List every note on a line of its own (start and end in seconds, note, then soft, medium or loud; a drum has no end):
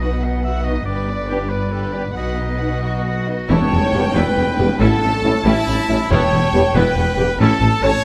0.00 0.85 B1 soft
0.00 0.84 B2 soft
0.00 0.10 B3 soft
0.00 0.23 D#4 soft
0.00 0.10 D#4 soft
0.00 0.23 F#4 soft
0.00 0.09 F#4 soft
0.00 1.53 B4 soft
0.00 0.25 D#5 soft
0.00 0.23 F#5 soft
0.22 0.45 B3 soft
0.22 0.44 D#4 soft
0.22 0.44 D#5 soft
0.22 0.44 F#5 soft
0.44 0.64 D#4 soft
0.44 0.64 F#4 soft
0.44 0.66 E5 soft
0.44 0.64 F#5 soft
0.64 0.87 B3 soft
0.64 0.73 B3 medium
0.64 0.87 D#4 soft
0.64 0.73 D#4 medium
0.64 0.73 F#4 soft
0.64 0.85 D#5 medium
0.64 0.87 D#5 soft
0.85 2.13 G1 medium
0.85 2.14 G2 medium
0.85 1.07 D4 soft
0.85 1.06 G4 soft
0.85 1.08 B4 medium
0.85 1.51 D5 medium
1.08 1.30 B3 soft
1.08 1.30 B4 soft
1.08 1.30 D5 medium
1.27 1.37 B3 medium
1.27 1.51 D4 soft
1.27 1.38 D4 medium
1.27 1.51 G4 soft
1.27 1.37 G4 medium
1.27 1.50 B4 medium
1.49 1.73 B3 medium
1.49 2.16 B4 medium
1.49 1.72 B4 medium
1.49 1.72 D5 soft
1.49 1.74 D5 medium
1.71 1.93 D4 soft
1.71 1.93 G4 soft
1.71 1.95 A4 medium
1.71 1.92 B4 soft
1.91 2.01 B3 medium
1.91 2.16 B3 soft
1.91 2.02 D4 medium
1.91 2.02 G4 medium
1.91 2.15 B4 soft
1.91 2.16 B4 soft
1.91 2.15 D5 soft
2.13 3.27 B1 soft
2.13 3.27 B2 soft
2.13 2.36 D#4 soft
2.13 2.81 B4 soft
2.13 2.35 F#5 soft
2.17 2.37 F#4 soft
2.17 3.26 D#5 soft
2.36 2.60 B3 soft
2.36 2.61 D#4 soft
2.36 2.60 D#5 soft
2.59 2.68 B3 soft
2.59 2.82 D#4 soft
2.59 2.69 D#4 soft
2.59 2.68 F#4 soft
2.59 2.80 F#4 soft
2.59 2.82 F#5 soft
2.80 3.05 B3 soft
2.80 3.04 D#4 soft
2.80 3.02 F#4 medium
2.80 3.27 F#4 medium
2.80 3.52 F#4 medium
2.80 3.04 D#5 soft
3.03 3.26 D#4 soft
3.03 3.25 F#4 soft
3.03 3.26 F#5 soft
3.27 3.35 B3 soft
3.27 3.48 B3 soft
3.27 3.35 D#4 soft
3.27 3.50 D#4 soft
3.27 3.36 F#4 soft
3.27 3.50 D#5 soft
3.49 3.58 E1 medium
3.49 3.58 E2 medium
3.49 3.70 B3 loud
3.49 3.70 E4 medium
3.49 4.14 C#5 medium
3.49 4.14 C#5 loud
3.49 4.15 C#5 loud
3.49 4.76 G5 medium
3.49 4.12 A5 loud
3.49 tam-tam medium
3.71 3.79 E1 medium
3.71 3.80 E1 medium
3.71 3.80 E2 medium
3.71 3.79 G3 medium
3.71 3.80 B3 medium
3.94 4.02 E1 medium
3.94 4.03 E1 medium
3.94 4.02 E2 medium
3.94 4.02 B3 medium
3.94 4.02 G4 medium
4.15 4.25 E1 loud
4.15 4.24 E1 medium
4.15 4.23 E2 medium
4.15 4.35 B3 medium
4.15 4.36 E4 medium
4.15 4.80 B4 loud
4.15 4.79 B4 medium
4.15 4.81 B4 medium
4.15 4.80 G5 medium
4.36 4.46 E1 medium
4.36 4.46 E2 medium
4.36 4.45 G3 medium
4.36 4.44 B3 medium
4.59 4.67 E1 medium
4.59 4.68 E1 medium
4.59 4.67 E2 medium
4.59 4.67 B3 medium
4.59 4.68 B3 medium
4.59 4.67 G4 medium
4.80 4.88 A1 medium
4.80 4.90 A1 medium
4.80 4.88 A2 medium
4.80 5.00 C#4 medium
4.80 5.00 E4 loud
4.80 5.46 A4 loud
4.80 5.44 A4 medium
4.80 5.44 A4 loud
4.80 5.02 F#5 medium
4.80 6.11 A5 medium
5.02 5.10 A1 medium
5.02 5.11 A1 medium
5.02 5.10 A2 medium
5.02 5.11 A3 medium
5.02 5.11 C#4 medium
5.02 5.09 E5 medium
5.23 5.32 A1 medium
5.23 5.33 A1 medium
5.23 5.31 A2 medium
5.23 5.33 C#4 medium
5.23 5.32 C#4 medium
5.23 5.32 E4 medium
5.23 5.31 F#5 medium
5.45 5.54 A1 loud
5.45 5.53 A1 medium
5.45 5.53 A2 loud
5.45 5.66 C#4 medium
5.45 5.94 E4 loud
5.45 6.09 E4 loud
5.45 5.65 E4 medium
5.45 6.10 E4 medium
5.45 5.53 G5 medium
5.66 5.75 A1 medium
5.66 5.77 A1 medium
5.66 5.74 A2 medium
5.66 5.76 A3 medium
5.66 5.76 C#4 medium
5.66 5.89 A5 medium
5.89 5.98 A1 medium
5.89 5.99 A1 medium
5.89 5.97 A2 medium
5.89 5.97 C#4 medium
5.89 5.98 C#4 medium
5.89 5.97 E4 medium
5.89 6.12 B5 medium
6.11 6.19 E1 medium
6.11 6.21 E1 medium
6.11 6.19 E2 medium
6.11 6.72 E2 loud
6.11 6.31 B3 loud
6.11 6.32 E4 loud
6.11 6.76 C#5 loud
6.11 6.75 C#5 medium
6.11 6.76 C#5 loud
6.11 7.37 G5 medium
6.11 6.74 A5 medium
6.32 6.41 E1 medium
6.32 6.42 E1 medium
6.32 6.41 E2 medium
6.32 6.40 G3 medium
6.32 6.41 B3 medium
6.54 6.62 E1 medium
6.54 6.63 E1 medium
6.54 6.63 E2 medium
6.54 6.61 B3 medium
6.54 6.63 B3 medium
6.54 6.61 G4 medium
6.75 6.83 E1 medium
6.75 6.84 E1 loud
6.75 6.84 E2 loud
6.75 6.95 B3 medium
6.75 6.95 E4 medium
6.75 7.39 B4 loud
6.75 7.38 B4 medium
6.75 7.40 B4 loud
6.75 6.96 G5 medium
6.95 7.03 E1 medium
6.95 7.06 E1 medium
6.95 7.05 E2 medium
6.95 7.05 G3 medium
6.95 7.05 B3 medium
6.95 7.01 F#5 medium
7.17 7.25 E1 medium
7.17 7.27 E1 medium
7.17 7.26 E2 medium
7.17 7.25 B3 medium
7.17 7.27 B3 medium
7.17 7.25 G4 medium
7.17 7.23 G5 medium
7.39 7.47 A1 medium
7.39 7.48 A1 medium
7.39 7.48 A2 medium
7.39 7.60 C#4 loud
7.39 7.60 E4 loud
7.39 7.82 A4 loud
7.39 7.85 A4 loud
7.39 7.82 A4 medium
7.39 8.02 A5 loud
7.39 8.04 A5 medium
7.60 7.68 A1 medium
7.60 7.69 A1 medium
7.60 7.70 A2 medium
7.60 7.70 A3 medium
7.60 7.70 C#4 medium
7.81 7.89 A1 medium
7.81 7.92 A1 medium
7.81 7.91 A2 medium
7.81 7.90 C#4 loud
7.81 7.91 C#4 medium
7.81 7.89 A4 medium
7.81 7.91 C#5 medium
7.81 8.04 C#5 loud